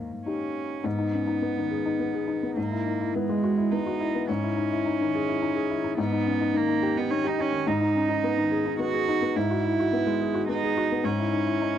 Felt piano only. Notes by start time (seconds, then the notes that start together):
Already playing: G#2 A#3
0.26 D#4 G4
0.84 G#2
0.98 D#4
1.13 C#4
1.27 D#4
1.42 B3
1.57 D#3
1.71 G#4
1.86 D#4
1.99 B3
2.14 G#4
2.27 D#4
2.43 B3
2.57 G#2
2.71 E4
2.86 D#4
3.01 E4
3.15 B3
3.29 G#3
3.43 F#4
3.58 E4
3.72 B3
3.86 F#4
4.00 E4
4.15 B3
4.29 G#2
4.43 E4
4.57 D#4
4.72 E4
4.86 D#4
5.01 D#3
5.15 G#4
5.28 E4
5.42 D#4
5.56 G#4
5.70 E4
5.84 D#4
5.98 G#2
6.12 D#4
6.26 C#4
6.41 D#4
6.54 D#3
6.69 D#4
6.83 G4
6.98 D#4
7.11 D#3
7.24 G4
7.39 D#4
7.52 D#3
7.67 G#2
7.81 D#4
7.95 C#4
8.09 D#4
8.24 B3
8.38 D#3
8.51 G#4
8.66 D#4
8.79 B3
8.93 G#4
9.09 D#4
9.22 B3
9.36 G#2
9.51 F#4
9.64 E4
9.80 F#4
9.93 B3
10.06 G#3
10.21 G#4
10.34 F#4
10.49 B3
10.63 G#4
10.77 F#4
10.92 B3
11.04 G#2
11.19 E4
11.33 D#4
11.47 E4
11.62 D#4